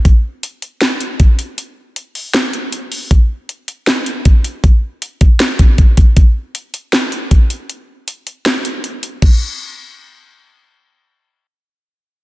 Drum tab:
CC |--------|--------|--------|--------|
HH |x-xxxxxx|x-xoxxxo|x-xxxxxx|x-xxxxxx|
CP |----x---|----x---|----x---|----x---|
SD |----o---|----o---|----o---|----o---|
BD |o-----o-|--------|o-----o-|o--o-ooo|

CC |--------|--------|x-------|--------|
HH |x-xxxxxx|x-xxxxxx|--------|--------|
CP |----x---|----x---|--------|--------|
SD |----o---|----o---|--------|--------|
BD |o-----o-|--------|o-------|--------|